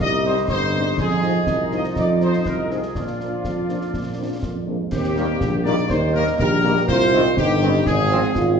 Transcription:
0.00 tuba C2, trombone section G3 D#4, woodwind section G4 D#5, trumpet section D#5, concert bass drum, snare
0.25 french horn section G3 C4 D#4, trumpet section C5, snare
0.37 snare
0.48 tuba G1, trumpet section C5, concert bass drum, snare
0.73 french horn section G3 C4 D#4, snare
0.86 snare
0.98 tuba F2, trombone section F3 D#4, woodwind section F4 D#5, trumpet section G#4, concert bass drum, snare, crash
1.10 snare
1.23 french horn section F3 C4 D#4, snare
1.47 tuba C2, concert bass drum, snare
1.71 french horn section F3 C4 D#4, trumpet section D#5, snare
1.84 snare
1.96 tuba F2, trumpet section D5, concert bass drum, snare
2.20 french horn section F3 C4 D#4, trumpet section C5, snare
2.33 snare
2.46 tuba C2, trumpet section A#4, concert bass drum, snare
2.70 french horn section F3 C4 D#4, trumpet section G#4, snare
2.83 snare
2.95 tuba A#2, trombone section F3 D4, woodwind section F4 D5, trumpet section F4, concert bass drum, snare
3.07 snare
3.19 french horn section F3 A#3 D4, snare
3.44 tuba F2, euphonium F3, concert bass drum, snare
3.69 french horn section F3 A#3 D4, snare
3.81 snare
3.93 tuba A#2, concert bass drum, snare
4.18 french horn section F3 A#3 D4, euphonium C4
4.43 tuba F2, euphonium A#3, concert bass drum, snare
4.66 french horn section F3 A#3 D4, euphonium G#3
4.91 tuba D#2, euphonium C4, woodwind section G4, trumpet section G4, concert bass drum, snare, crash
5.04 snare
5.16 trombone section D#3 A#3, french horn section G3 A#3 D#4, snare
5.41 tuba A#1, euphonium A#3, concert bass drum, snare
5.64 trombone section D#3 A#3, french horn section G3 A#3 D#4, woodwind section D5, trumpet section D5, snare
5.78 snare
5.88 tuba D#2, euphonium D#4, woodwind section C5, trumpet section C5, concert bass drum, snare
6.13 trombone section D#3 A#3, french horn section G3 A#3 D#4, woodwind section A#4, trumpet section A#4, snare
6.27 snare
6.39 tuba A#1, euphonium G4, trumpet section A#4, woodwind section A#4, concert bass drum, snare
6.62 trombone section D#3 A#3, french horn section G3 A#3 D#4, snare
6.77 snare
6.88 tuba C2, euphonium F4, woodwind section C5, trumpet section C5, concert bass drum, snare
7.01 snare
7.11 trombone section D#3 C4, french horn section G3 C4 D#4, snare
7.37 tuba G1, euphonium D#4, trumpet section G4, woodwind section G4, concert bass drum, snare
7.60 trombone section D#3 C4, french horn section G3 C4 D#4, snare
7.74 snare
7.85 tuba G#1, euphonium C4, trumpet section G#4, woodwind section G#4, concert bass drum, snare
8.10 trombone section F3 C4, french horn section F3 C4 F4, snare
8.23 snare
8.35 tuba G#1, euphonium F4, concert bass drum, snare

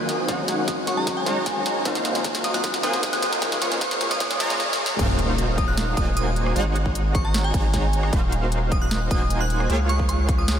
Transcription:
Already playing: sub bass D#1, supersaw synth A#3 D#4 F#4 C5 G#5, riser
0.00 tine electric piano F4
0.09 snare, closed hi-hat
0.27 sub bass G#1, tine electric piano D#3 F#3 G#3 C#4 F#4, supersaw synth G#3 D#4 F#4 C#5 F#5, kick, snare, closed hi-hat
0.48 snare, closed hi-hat
0.57 tine electric piano D#3 F#3 G#3 C#4 F#4
0.68 kick, snare, closed hi-hat
0.87 synth bell C#6, snare, closed hi-hat
0.96 tine electric piano D#3 F#3 G#3 C#4 F#4, synth bell A#5
1.07 kick, snare, closed hi-hat
1.17 synth bell G#5
1.25 sub bass G#1, tine electric piano D#3 F#3 G#3 C#4 F#4, supersaw synth G#3 D#4 F#4 C#5 A#5, snare, closed hi-hat
1.46 kick, snare, closed hi-hat
1.55 tine electric piano D#3 F#3 G#3 C#4 F#4
1.66 snare, closed hi-hat
1.84 sub bass D#1, tine electric piano D#3 F#3 A#3 C4 F4, supersaw synth A#3 D#4 F#4 C5 F5, kick, snare, closed hi-hat
1.95 snare
2.05 snare, closed hi-hat
2.14 tine electric piano D#3 F#3 A#3 C4 F4, snare
2.24 kick, snare, closed hi-hat
2.35 snare
2.44 synth bell D#6, snare, closed hi-hat
2.53 tine electric piano D#3 F#3 A#3 C4 F4, synth bell F#6, snare
2.64 kick, snare, closed hi-hat
2.74 snare
2.82 sub bass D#1, tine electric piano D#3 F#3 A#3 C4 F4, supersaw synth A#3 D#4 F#4 C5 G#5, synth bell D#6, snare, closed hi-hat
2.93 snare
3.03 kick, snare, closed hi-hat
3.12 tine electric piano D#3 F#3 A#3 C4 F4, synth bell F#6, snare
3.22 snare, closed hi-hat
3.33 snare
3.41 sub bass C#2, tine electric piano C#3 F3 G#3 A#3 F4, supersaw synth A#3 F4 G#4 C#5 F5, kick, snare, closed hi-hat
3.52 snare
3.62 synth bell C#6, snare, closed hi-hat
3.71 tine electric piano C#3 F3 G#3 A#3 F4, snare
3.81 synth bell C#6, kick, snare, closed hi-hat
3.91 snare
4.01 snare, closed hi-hat
4.10 tine electric piano C#3 F3 G#3 A#3 F4, synth bell D#6, snare
4.20 synth bell D#6, kick, snare, closed hi-hat
4.31 snare
4.40 sub bass C#2, supersaw synth A#3 F4 G#4 C#5 A#5, snare, closed hi-hat
4.49 tine electric piano C#3 F3 G#3 A#3 G#4, snare
4.60 snare
4.73 snare
4.86 snare
4.99 sub bass D#1, supersaw synth A#3 D#4 F#4 C5 F5, kick, closed hi-hat, crash, sub drop
5.19 closed hi-hat
5.38 closed hi-hat
5.58 synth bell D#6, kick, closed hi-hat
5.68 synth bell F#6
5.77 snare, closed hi-hat
5.97 sub bass D#1, supersaw synth A#3 D#4 F#4 C5 G#5, synth bell D#6, kick, closed hi-hat
6.17 synth bell D#6, closed hi-hat
6.36 closed hi-hat
6.46 cross-stick
6.56 sub bass G#1, supersaw synth G#3 D#4 F#4 C#5 F#5, closed hi-hat
6.76 closed hi-hat
6.86 kick
6.95 closed hi-hat
7.15 synth bell C#6, kick, cross-stick, closed hi-hat
7.25 synth bell A#5
7.34 snare, closed hi-hat
7.44 synth bell G#5
7.54 sub bass G#1, supersaw synth G#3 D#4 F#4 C#5 A#5, kick, closed hi-hat
7.74 kick, snare, closed hi-hat
7.93 closed hi-hat
8.03 cross-stick
8.13 sub bass D#1, supersaw synth A#3 D#4 F#4 C5 F5, kick, closed hi-hat
8.32 closed hi-hat
8.52 closed hi-hat
8.72 synth bell D#6, kick, closed hi-hat
8.82 synth bell F#6
8.91 snare, closed hi-hat
9.11 sub bass D#1, supersaw synth A#3 D#4 F#4 C5 G#5, synth bell D#6, kick, closed hi-hat
9.30 closed hi-hat
9.41 synth bell F#6
9.50 closed hi-hat
9.60 cross-stick
9.70 sub bass C#2, supersaw synth A#3 F4 G#4 C#5 F5, closed hi-hat
9.89 synth bell C#6, closed hi-hat
9.99 kick
10.09 synth bell C#6, closed hi-hat
10.29 kick, cross-stick, closed hi-hat
10.38 synth bell D#6
10.48 synth bell D#6, snare, closed hi-hat

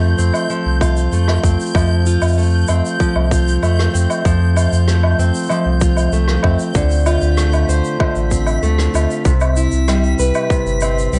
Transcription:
Already playing: sub bass F2, steel-string acoustic guitar F3 A3 C4 F4, synth texture G6
0.18 sub bass F2, steel-string acoustic guitar C4, shaker
0.34 low woodblock, shaker
0.50 steel-string acoustic guitar F3, shaker
0.66 sub bass C2
0.81 steel-string acoustic guitar F4, kick, low woodblock, shaker
0.96 shaker
1.12 sub bass F2, steel-string acoustic guitar A3, shaker
1.28 cross-stick, low woodblock
1.43 sub bass F2, steel-string acoustic guitar C4, kick, shaker
1.60 shaker
1.65 shaker
1.71 shaker
1.75 sub bass F2, steel-string acoustic guitar F3, kick, low woodblock, shaker
1.81 shaker
1.86 shaker
2.06 steel-string acoustic guitar F4, shaker
2.22 sub bass F2, low woodblock, shaker
2.27 shaker
2.32 shaker
2.38 steel-string acoustic guitar A3, shaker
2.42 shaker
2.46 shaker
2.49 shaker
2.53 shaker
2.57 shaker
2.61 shaker
2.65 shaker
2.68 sub bass F2, steel-string acoustic guitar C4, low woodblock, shaker
2.85 shaker
3.00 steel-string acoustic guitar F3, kick, shaker
3.16 sub bass C2, low woodblock
3.31 steel-string acoustic guitar F4, kick, shaker
3.48 shaker
3.62 sub bass F2, steel-string acoustic guitar A3, low woodblock, shaker
3.79 cross-stick
3.94 sub bass F2, steel-string acoustic guitar C4, shaker
4.10 low woodblock, shaker
4.25 sub bass F2, steel-string acoustic guitar F3, kick, shaker
4.56 steel-string acoustic guitar F4, low woodblock, shaker
4.72 sub bass F2, shaker
4.87 steel-string acoustic guitar A3, cross-stick, shaker
5.03 low woodblock
5.19 sub bass F2, steel-string acoustic guitar C4, shaker
5.34 shaker
5.38 shaker
5.42 shaker
5.46 low woodblock, shaker
5.50 steel-string acoustic guitar F3, shaker
5.66 sub bass C2
5.81 steel-string acoustic guitar F4, kick, shaker
5.97 low woodblock, shaker
6.12 sub bass C2, steel-string acoustic guitar A3, shaker
6.28 cross-stick
6.43 sub bass F2, steel-string acoustic guitar C4, kick, low woodblock
6.59 shaker
6.74 sub bass D2, steel-string acoustic guitar D3, synth texture B6, kick, shaker
6.90 shaker
6.95 shaker
6.99 shaker
7.03 shaker
7.06 steel-string acoustic guitar F4, low woodblock, shaker
7.10 shaker
7.14 shaker
7.18 shaker
7.21 sub bass D2, shaker
7.37 steel-string acoustic guitar A3, cross-stick, shaker
7.53 low woodblock, shaker
7.68 sub bass D2, steel-string acoustic guitar C5, shaker
7.84 shaker
8.00 steel-string acoustic guitar D3, kick, low woodblock
8.15 sub bass A1, shaker
8.31 steel-string acoustic guitar C4, kick, shaker
8.46 low woodblock, shaker
8.63 sub bass D2, steel-string acoustic guitar A3, shaker
8.78 cross-stick, shaker
8.94 sub bass D2, steel-string acoustic guitar F4, low woodblock, shaker
9.10 shaker
9.25 sub bass C2, steel-string acoustic guitar C3, kick, shaker
9.40 low woodblock, shaker
9.56 steel-string acoustic guitar E4, shaker
9.71 sub bass C2, shaker
9.88 steel-string acoustic guitar G3, cross-stick, low woodblock, shaker
10.03 shaker
10.19 sub bass C2, steel-string acoustic guitar B4, shaker
10.34 low woodblock, shaker
10.50 steel-string acoustic guitar C3, kick, shaker
10.66 sub bass G1, shaker
10.81 steel-string acoustic guitar C4, low woodblock, shaker
10.98 shaker
11.13 sub bass C2, steel-string acoustic guitar G3, shaker

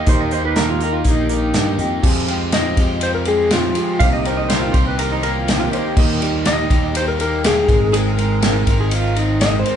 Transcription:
Already playing: overdriven electric guitar A#3 D#4 G4, electric slide guitar G5
0.06 fingered electric bass D#2, twelve-string acoustic guitar D#3 A#3 D#4 G4, grand piano D#4 G4 A#4, pedal steel guitar C5, kick, closed hi-hat
0.20 pedal steel guitar D#5
0.31 overdriven electric guitar A#3, twelve-string acoustic guitar D#4 G4, pedal steel guitar C5, closed hi-hat
0.36 twelve-string acoustic guitar A#3
0.44 grand piano D#4 G4 A#4, pedal steel guitar B4
0.56 twelve-string acoustic guitar D#3 A#3, pedal steel guitar A#4, snare, closed hi-hat
0.60 twelve-string acoustic guitar D#4 G4
0.70 pedal steel guitar F4
0.81 twelve-string acoustic guitar D#4 G4, pedal steel guitar A#4, closed hi-hat
0.85 twelve-string acoustic guitar A#3
0.93 pedal steel guitar F4
1.04 fingered electric bass A#1, twelve-string acoustic guitar D#3 A#3, pedal steel guitar D#4, kick, closed hi-hat
1.09 twelve-string acoustic guitar D#4 G4
1.29 grand piano D#4 G4 A#4, pedal steel guitar D#4, twelve-string acoustic guitar G4, closed hi-hat
1.33 twelve-string acoustic guitar A#3 D#4
1.54 fingered electric bass G2, twelve-string acoustic guitar D#3, overdriven electric guitar G4, snare, closed hi-hat
1.58 twelve-string acoustic guitar A#3 D#4 G4
1.78 fingered electric bass F2, twelve-string acoustic guitar D#4 G4, closed hi-hat
1.83 twelve-string acoustic guitar A#3
2.03 fingered electric bass F2, twelve-string acoustic guitar F2 C3 F3 G#3 C4, grand piano F4 G4 G#4, kick, crash
2.07 twelve-string acoustic guitar G4
2.27 overdriven electric guitar F3, grand piano G#3 F4 G4, twelve-string acoustic guitar G#3 C4 G4, ride
2.32 twelve-string acoustic guitar F3
2.52 twelve-string acoustic guitar F2 C3 F3 G#3 C4 G4, electric slide guitar D#5, snare, ride
2.77 fingered electric bass F2, twelve-string acoustic guitar G#3 C4 G4, kick, ride
2.82 twelve-string acoustic guitar F3
3.00 twelve-string acoustic guitar F3 G#3, overdriven electric guitar C4, electric slide guitar C5, ride
3.05 twelve-string acoustic guitar C4 G4
3.15 electric slide guitar A#4
3.25 overdriven electric guitar G#3, twelve-string acoustic guitar C4 G4, electric slide guitar G#4, ride
3.30 twelve-string acoustic guitar F3 G#3
3.51 twelve-string acoustic guitar F2 C3 F3 G#3 C4 G4, electric slide guitar F4, snare, ride
3.75 twelve-string acoustic guitar G#3 C4 G4, grand piano F4 G4 G#4, ride
3.80 twelve-string acoustic guitar F3
3.99 fingered electric bass C2, twelve-string acoustic guitar C3 D#3 A#3 C4 G4, grand piano D#4 A#4 C5, pedal steel guitar F5, kick, ride
4.13 pedal steel guitar D#5
4.25 overdriven electric guitar D#3, twelve-string acoustic guitar C4 G4, grand piano D#4 A#4 C5, pedal steel guitar A#4, ride
4.29 twelve-string acoustic guitar A#3
4.37 pedal steel guitar D#5
4.49 twelve-string acoustic guitar C3 D#3 A#3 C4 G4, pedal steel guitar C5, snare, ride
4.61 pedal steel guitar F4
4.73 fingered electric bass C2, twelve-string acoustic guitar C4 G4, pedal steel guitar C5, kick, ride
4.78 twelve-string acoustic guitar A#3
4.87 pedal steel guitar B4
4.99 twelve-string acoustic guitar D#3 A#3 C4 G4, pedal steel guitar A#4, ride
5.12 pedal steel guitar D#4
5.23 twelve-string acoustic guitar A#3 C4 G4, pedal steel guitar A#4, ride
5.36 pedal steel guitar F4
5.48 twelve-string acoustic guitar C3 D#3 A#3 C4 G4, snare, ride
5.60 pedal steel guitar F4
5.71 twelve-string acoustic guitar A#3 C4 G4, grand piano D#4 A#4 C5, pedal steel guitar G4, ride
5.97 fingered electric bass D#2, twelve-string acoustic guitar D#3 A#3 D#4 G4, grand piano D#4 G4 A#4, kick, crash
6.21 overdriven electric guitar G3, twelve-string acoustic guitar A#3 D#4 G4, grand piano D#4 G4 A#4, ride
6.45 twelve-string acoustic guitar D#3 A#3 D#4 G4, electric slide guitar D#5, snare, ride
6.70 fingered electric bass D#2, twelve-string acoustic guitar A#3 D#4 G4, kick, ride
6.95 twelve-string acoustic guitar D#3 A#3 D#4 G4, electric slide guitar C5, ride
7.08 electric slide guitar A#4
7.19 twelve-string acoustic guitar A#3 D#4 G4, electric slide guitar A#4, ride
7.43 twelve-string acoustic guitar D#3 A#3 D#4 G4, overdriven electric guitar G3, electric slide guitar G#4, snare, ride
7.68 fingered electric bass G#1, overdriven electric guitar G#3, grand piano C4 G#4 A#4, twelve-string acoustic guitar D#4 A#4, kick, ride
7.72 twelve-string acoustic guitar C4
7.92 twelve-string acoustic guitar G#3 C4 D#4 A#4, pedal steel guitar G#4, ride
8.06 pedal steel guitar A#4
8.17 overdriven electric guitar G#3, grand piano C4 G#4 A#4, twelve-string acoustic guitar C4 D#4 A#4, ride
8.42 twelve-string acoustic guitar G#3 C4 D#4 A#4, snare, ride
8.67 fingered electric bass G#1, twelve-string acoustic guitar C4 D#4 A#4, kick, ride
8.81 pedal steel guitar G#4
8.89 twelve-string acoustic guitar G#3 C4, overdriven electric guitar D#4, pedal steel guitar F4, ride
8.95 twelve-string acoustic guitar D#4 A#4
9.15 overdriven electric guitar C4, pedal steel guitar D#4, twelve-string acoustic guitar D#4 A#4, ride
9.19 twelve-string acoustic guitar C4
9.39 twelve-string acoustic guitar G#3 C4 D#4 A#4, electric slide guitar D#5, snare, ride
9.60 electric slide guitar C5
9.64 overdriven electric guitar C4, grand piano C4 G#4, twelve-string acoustic guitar D#4 A#4, ride
9.68 twelve-string acoustic guitar C4, grand piano A#4

